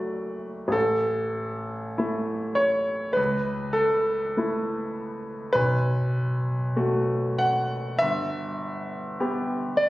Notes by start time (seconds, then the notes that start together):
Already playing: F#1 A3 F#4 D5 E5
0.68 A1
0.72 A4
1.98 A3 E4
2.55 C#5
3.13 C#2 B4
3.73 A4
4.37 A3 E4
5.53 B1 B4
6.76 A3 F#4
7.38 F#5
7.99 G1 E5
9.20 B3 G4
9.77 D5